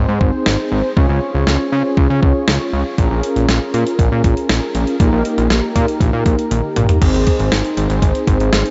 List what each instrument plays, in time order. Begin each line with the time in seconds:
Already playing: analog polysynth C4 D#4 G#4 C5
0.08 analog synth bass G#2
0.21 analog synth bass G#1, kick
0.46 analog synth bass G#1, snare
0.72 analog synth bass G#1
0.97 analog synth bass C#2, analog polysynth C#4 F4 G#4 C#5, kick
1.09 analog synth bass C#2
1.35 analog synth bass C#2
1.47 analog synth bass C#2, snare
1.72 analog synth bass C#3
1.97 analog synth bass C#2, kick
2.10 analog synth bass C#3
2.23 analog synth bass C#2, kick
2.48 analog synth bass C#2, snare
2.73 analog synth bass C#2
2.98 analog synth bass A#1, analog polysynth C#4 F4 G#4 A#4, kick, closed hi-hat
3.11 analog synth bass A#1
3.23 closed hi-hat
3.36 analog synth bass A#1, closed hi-hat
3.49 analog synth bass A#1, snare, closed hi-hat
3.74 analog synth bass A#2, closed hi-hat
3.87 closed hi-hat
3.99 analog synth bass A#1, kick, closed hi-hat
4.12 analog synth bass A#2
4.24 analog synth bass A#1, kick, closed hi-hat
4.37 closed hi-hat
4.49 analog synth bass A#1, snare, closed hi-hat
4.75 analog synth bass A#1, closed hi-hat
4.87 closed hi-hat
5.00 analog synth bass A#1, analog polysynth A#3 D#4 G4 A#4, kick, closed hi-hat
5.13 analog synth bass A#1
5.25 closed hi-hat
5.38 analog synth bass A#1, closed hi-hat
5.50 analog synth bass A#1, snare, closed hi-hat
5.76 analog synth bass A#2, kick, closed hi-hat
5.88 closed hi-hat
6.00 analog synth bass A#1, kick, closed hi-hat
6.13 analog synth bass A#2
6.26 analog synth bass A#1, kick, closed hi-hat
6.39 closed hi-hat
6.51 analog synth bass A#1, closed hi-hat, high tom
6.76 analog synth bass A#1, closed hi-hat, mid tom
6.89 closed hi-hat, floor tom
7.02 analog synth bass G#1, analog polysynth C4 D#4 G#4 C5, kick, closed hi-hat, crash
7.14 analog synth bass G#1, closed hi-hat
7.27 kick, closed hi-hat
7.39 analog synth bass G#1, closed hi-hat
7.52 analog synth bass G#1, snare, closed hi-hat
7.65 closed hi-hat
7.77 analog synth bass G#1, closed hi-hat
7.90 analog synth bass G#1, closed hi-hat
8.02 analog synth bass G#1, kick, closed hi-hat
8.15 closed hi-hat
8.27 analog synth bass G#1, kick, closed hi-hat
8.40 analog synth bass G#1, closed hi-hat
8.53 analog synth bass G#1, snare, closed hi-hat
8.66 closed hi-hat